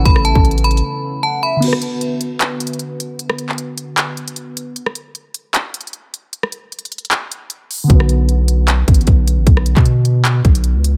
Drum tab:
CC |------------------------------------------------|x-----------------------------------------------|------------------------------------------------|------------------------------------------------|
HH |x-----x-----x-x-x-x-x-x-------------------------|x-----x-----x-----x-----x-----x-x-x-x-----x-----|x-----x-----x-----x-----x-----x--x--x-----x-----|x-----x-----x-----x-----x-----x-x-x-x-----x-----|
CP |------------------------------------------------|------------------------x-----------------------|---------x--------------x-----------------------|------------------------x-----------------------|
SD |---r--------------------------------------------|---r--------------------------------------------|---r--------------------------------------------|---r--------------------------------------------|
BD |o--------o--------------------------------------|------------------------------------------------|------------------------------------------------|------------------------------------------------|

CC |------------------------------------------------|------------------------------------------------|------------------------------------------------|
HH |x-----x-----x-x-x-x-x-x-x-----x-----x-----o-----|x-----x-----x-----x-----x-----x-x-x-x-----x-----|x-----x-----x-----x-----x-----x--x--x-----x-----|
CP |------------------------x-----------------------|------------------------x-----------------------|---------x--------------x-----------------------|
SD |---r--------------------------------------------|---r--------------------------------------------|---r--------------------------------------------|
BD |------------------------------------------------|o-----------------------------o-----o-----------|o--------o--------------------o-----------------|